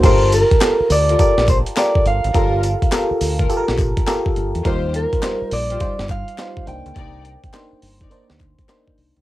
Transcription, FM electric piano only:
X:1
M:4/4
L:1/8
Q:"Swing 16ths" 1/4=104
K:Gm
V:1 name="FM electric piano"
[FGAB]2 [FGAB]2 [FGAB]2 [FGAB]2 | [FGAB]2 [FGAB]2 [FGAB]2 [FGAB]2 | [G,EFBc]2 [G,EFc]2 [G,EFc]2 [G,EFc] [B,DEc]- | [B,DEc]2 [B,DEc]2 [B,DEc]2 [B,DEc]2 |]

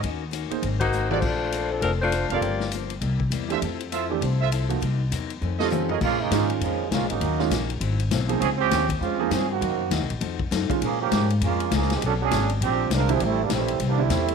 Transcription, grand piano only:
X:1
M:4/4
L:1/8
Q:"Swing" 1/4=200
K:Bblyd
V:1 name="Grand piano"
z3 [B,_E_Ac] z3 [G,CFG] | z6 z [G,CFA] | z6 z [E,A,DG] | z3 [E,A,DG] z3 [F,B,_E_G] |
z4 z [G,CFA]3 | z2 [_E,_A,_DF]3 z3 | z [_E,_A,_DF] z4 z [F,B,_E_A] | z4 z [F,B,_E_A] z2 |
z6 z [_E,_A,_DF] | z8 | z6 z [D,G,CE] | z4 z [D,G,CE] z2 |]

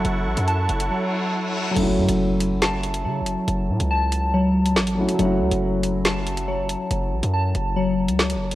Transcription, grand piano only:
X:1
M:4/4
L:1/8
Q:1/4=140
K:F#m
V:1 name="Grand piano"
[F,A,CEF]8 | [F,A,CEF]8- | [F,A,CEF]6- [F,A,CEF] [F,A,CEF] | [F,A,CEF]8- |
[F,A,CEF]8 |]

